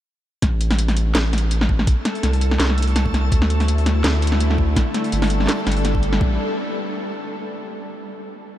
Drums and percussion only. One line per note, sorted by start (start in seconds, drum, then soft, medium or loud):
0.42 kick loud
0.42 snare medium
0.42 closed hi-hat medium
0.61 closed hi-hat medium
0.71 snare medium
0.71 open hi-hat soft
0.79 closed hi-hat medium
0.88 snare medium
0.88 open hi-hat soft
0.97 closed hi-hat medium
1.15 snare loud
1.15 snare medium
1.15 closed hi-hat medium
1.33 snare medium
1.33 closed hi-hat medium
1.38 closed hi-hat medium
1.51 closed hi-hat medium
1.61 snare medium
1.69 kick medium
1.79 snare medium
1.87 kick loud
1.87 closed hi-hat medium
2.05 snare medium
2.05 closed hi-hat medium
2.15 open hi-hat soft
2.23 snare medium
2.23 closed hi-hat medium
2.33 open hi-hat soft
2.41 closed hi-hat medium
2.51 snare medium
2.60 snare loud
2.60 closed hi-hat medium
2.70 snare medium
2.78 closed hi-hat medium
2.82 closed hi-hat medium
2.88 open hi-hat soft
2.96 snare medium
2.96 closed hi-hat medium
3.06 kick medium
3.14 snare medium
3.14 closed hi-hat soft
3.32 kick loud
3.32 closed hi-hat medium
3.42 snare medium
3.50 closed hi-hat medium
3.60 snare medium
3.60 open hi-hat soft
3.68 closed hi-hat medium
3.78 open hi-hat soft
3.86 snare medium
3.86 closed hi-hat medium
4.04 snare loud
4.04 snare medium
4.04 closed hi-hat medium
4.22 closed hi-hat soft
4.27 closed hi-hat medium
4.32 snare medium
4.40 closed hi-hat medium
4.50 snare medium
4.58 kick medium
4.76 kick loud
4.76 snare medium
4.76 closed hi-hat medium
4.94 snare soft
4.94 closed hi-hat medium
5.04 open hi-hat soft
5.12 closed hi-hat medium
5.22 snare medium
5.22 open hi-hat soft
5.24 open hi-hat soft
5.27 closed hi-hat medium
5.27 open hi-hat soft
5.40 snare soft
5.46 snare soft
5.49 snare loud
5.49 closed hi-hat medium
5.52 snare soft
5.67 snare medium
5.67 closed hi-hat soft
5.72 closed hi-hat medium
5.85 snare medium
5.85 closed hi-hat medium
5.95 kick medium
6.03 closed hi-hat soft
6.13 snare medium
6.21 kick loud